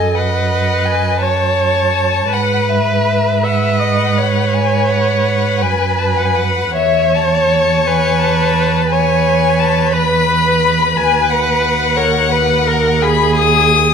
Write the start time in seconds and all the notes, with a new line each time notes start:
Already playing: F#2 A4 D#5 G#5
0.15 B4 D#5 F#5
0.86 G#5
1.20 C#5 A5
2.32 G#2 B4 F#5
2.69 E5
3.43 B4 E5 F#5
3.79 D#5
4.18 C#5
4.54 G#5
4.90 F#5
5.61 F#2 B4 G#5
5.98 A5
6.07 G#5
6.17 F#5
6.25 G#5
6.35 F#5
6.75 E2 C#5 E5
7.15 A5
7.86 B4 G#5
8.19 A5
8.90 B4 C#5 G#5
9.59 A5
9.93 B4 B5
10.95 D#2 B4 G#5
11.30 F#5
11.97 A#4 C#5
12.31 B4
12.67 A#4
13.02 G#4 B5
13.36 D#6